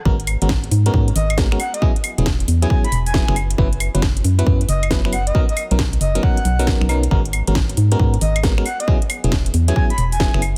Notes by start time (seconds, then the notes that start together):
0.05 G#1 G#3 B3 C#4 F#4 A#4, kick
0.20 closed hi-hat
0.27 open hi-hat, claves
0.42 G#1 G#3 B3 C#4 F#4 A#4, closed hi-hat
0.49 kick, snare
0.64 closed hi-hat
0.71 G#2, open hi-hat
0.86 G#3 B3 C#4 F#4 A#4, closed hi-hat
0.94 G#2 G#3, kick
1.08 closed hi-hat
1.16 G#1 D#5, open hi-hat
1.30 closed hi-hat, claves
1.38 G#3 B3 C#4 F#4 A#4, kick, snare, open hi-hat
1.52 G#3 B3 C#4 F#4 A#4, finger snap
1.60 F#5, open hi-hat, claves
1.74 D#5, closed hi-hat
1.82 F#3 B3 C#4 E4 G#4, kick
1.96 closed hi-hat
2.04 open hi-hat, claves
2.18 E1 F#3 B3 C#4 E4 G#4, closed hi-hat
2.26 kick, snare
2.40 closed hi-hat
2.48 E2, open hi-hat
2.62 F#3 B3 C#4 E4 G#4 G#5, closed hi-hat
2.70 F#3 B3 C#4 G#4 G#5, kick
2.84 B5, closed hi-hat
2.92 E1, open hi-hat
3.06 G#5, open hi-hat
3.14 F#3 B3 C#4 E4 G#4, kick, snare
3.28 F#1 F#3 B3 C#4 E4 G#4, finger snap
3.36 open hi-hat, claves
3.51 closed hi-hat
3.58 F#1 F#3 B3 C#4 E4 B4, kick
3.73 closed hi-hat
3.80 open hi-hat, claves
3.95 F#1 F#3 B3 C#4 E4 B4, closed hi-hat
4.02 kick, snare
4.17 closed hi-hat
4.24 F#2, open hi-hat
4.39 F#3 B3 C#4 E4 B4, closed hi-hat
4.46 F#2 F#3 B3 C#4 E4 B4, kick
4.61 closed hi-hat
4.69 F#1 D#5, open hi-hat
4.83 closed hi-hat, claves
4.91 F#3 B3 C#4 E4 B4, kick, snare, open hi-hat
5.05 F#3 B3 C#4 E4 B4, finger snap
5.13 F#5, open hi-hat, claves
5.27 D#5, closed hi-hat
5.35 F#3 B3 C#4 D#4 A#4, kick
5.49 D#5, closed hi-hat
5.57 open hi-hat, claves
5.71 B1 F#3 B3 C#4 D#4 A#4, closed hi-hat
5.79 kick, snare
5.93 closed hi-hat
6.01 F#1 D#5, open hi-hat
6.15 F#3 B3 C#4 D#4 A#4, closed hi-hat
6.23 F#3 C#4 A#4 F#5, kick
6.37 closed hi-hat
6.45 B1, open hi-hat
6.59 F#3 B3 C#4 D#4 A#4, open hi-hat
6.67 kick, snare
6.81 B1, finger snap
6.89 F#3 B3 C#4 D#4 A#4, open hi-hat, claves
7.03 closed hi-hat
7.11 G#1 G#3 B3 C#4 F#4 A#4, kick
7.25 closed hi-hat
7.33 open hi-hat, claves
7.47 G#1 G#3 B3 C#4 F#4 A#4, closed hi-hat
7.55 kick, snare
7.70 closed hi-hat
7.77 G#2, open hi-hat
7.92 G#3 B3 C#4 F#4 A#4, closed hi-hat
7.99 G#2 G#3 B3 F#4, kick
8.14 closed hi-hat
8.21 G#1 D#5, open hi-hat
8.36 closed hi-hat, claves
8.43 G#3 B3 C#4 F#4 A#4, kick, snare, open hi-hat
8.58 G#3 B3 C#4 F#4 A#4, finger snap
8.65 F#5, open hi-hat, claves
8.80 D#5, closed hi-hat
8.88 F#3 B3 C#4 E4 G#4, kick
9.02 closed hi-hat
9.10 open hi-hat, claves
9.24 E1 F#3 B3 C#4 E4 G#4, closed hi-hat
9.32 kick, snare
9.46 closed hi-hat
9.54 E2, open hi-hat
9.68 F#3 B3 C#4 E4 G#4 G#5, closed hi-hat
9.76 F#3 B3 C#4 E4 G#4 G#5, kick
9.90 B5, closed hi-hat
9.98 E1, open hi-hat
10.12 G#5, open hi-hat
10.20 F#3 B3 C#4 E4 G#4, kick, snare
10.34 F#1 F#3 B3 C#4 E4 G#4, finger snap
10.42 open hi-hat, claves